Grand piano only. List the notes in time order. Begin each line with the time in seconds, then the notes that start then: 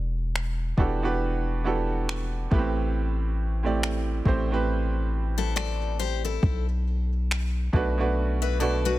0.77 E3 B3 D4 F#4 G4 A4
1.02 E3 B3 D4 F#4 G4 B4
1.64 E3 B3 D4 F#4 G4 A4
2.51 A2 A3 B3 G4 B4
2.59 C4
3.63 A2 A3 C4 G4 D5
4.25 A2 A3 C4 G4 C5
4.50 A2 A3 C4 G4 B4
7.73 B2 A3 D4 F#4 B4
7.98 B2 A3 D4 F#4 B4
8.60 B2 A3 D4 F#4 B4